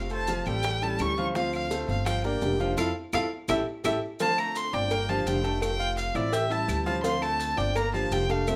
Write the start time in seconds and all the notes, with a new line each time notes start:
Already playing: F1 C3 A3 C4 F4 F5
0.10 A3 A4 C5 A5, maracas
0.27 F3 F4 F5, high bongo, maracas
0.46 A1 G3 A3 C4 F4 G4 A4 G5, high bongo, claves, maracas
0.63 muted nylon-string guitar stroke, high bongo, maracas
0.81 G3 C#4 E4 G4 A4 A5, high bongo, maracas
0.99 D2 E3 G3 C#4 E4 C#6, high bongo, low bongo, claves, maracas
1.17 F3 G3 C#4 E4 F4 F5, high bongo, maracas
1.35 D3 F3 A3 C4 F4 F5, high bongo, maracas
1.53 F5, claves, maracas
1.71 A3 A4 C5, high bongo, maracas
1.88 G1 A3 C4 F4 F5, high bongo, maracas
2.06 F3 F4 F5 G5, muted nylon-string guitar stroke, high bongo, claves, maracas
2.24 A#3 D4 G4 A#4 D5 G5, high bongo, maracas
2.41 F1 D3 F3 A#3 D4 G4, high bongo, low bongo, maracas
2.60 F3 A#3 D4 F4 G4 F5, high bongo, maracas
2.77 F2 C4 E4 F4 A4 F5, high bongo, claves, maracas
3.13 F2 C4 E4 F4 A4 F5, high bongo, claves, maracas
3.48 A1 A3 C#4 E4 G4 A4 E5, high bongo, claves, maracas
3.84 A1 A3 C#4 E4 G4 A4 E5, high bongo, claves, maracas
4.20 D3 F3 A3 C4 F4 F5 A5, cowbell, maracas
4.38 A3 A4 A5 A#5, claves, maracas
4.55 C6, cowbell, maracas
4.73 G1 A3 C4 D4 F4 D5 G5 D6, cowbell, maracas
4.91 A#3 A#4 A#5, muted nylon-string guitar stroke, cowbell, claves, maracas
5.09 F3 A#3 D4 F4 G4 F5 A5, maracas
5.26 F1 D3 F3 A#3 D4 G4 G5, cowbell, maracas
5.44 A3 A#3 D4 G4 A4 A5, cowbell, maracas
5.62 C3 A3 C4 F4 G5, cowbell, claves, maracas
5.79 F4 F5, maracas
5.97 F5, cowbell, maracas
6.15 A1 A3 C4 E4 F4 D5 E5 E6, cowbell, claves, maracas
6.32 G4 E5 G5 G6, cowbell, maracas
6.49 G3 C#4 E4 E5 A5 E6, maracas
6.66 D2 E3 G3 C#4 E4, cowbell, claves, maracas
6.85 F3 G3 C#4 E4 F4 F5 A5, cowbell, maracas
7.02 D3 F3 A3 C4 F4 F5 C6, cowbell, maracas
7.22 A3 A4 A5, claves, maracas
7.40 cowbell, maracas
7.56 G1 A3 C4 D4 F4 D5 G5 D6, cowbell, maracas
7.75 A#3 A#4 A#5, muted nylon-string guitar stroke, cowbell, claves, maracas
7.94 F3 A#3 D4 F4 G4 F5 A5, maracas
8.11 F1 D3 F3 A#3 D4 G4 G5, cowbell, maracas
8.29 A3 A#3 D4 G4 A4 F5 A5, cowbell, maracas
8.47 C3 A3 C4 F4 E5, cowbell, claves, maracas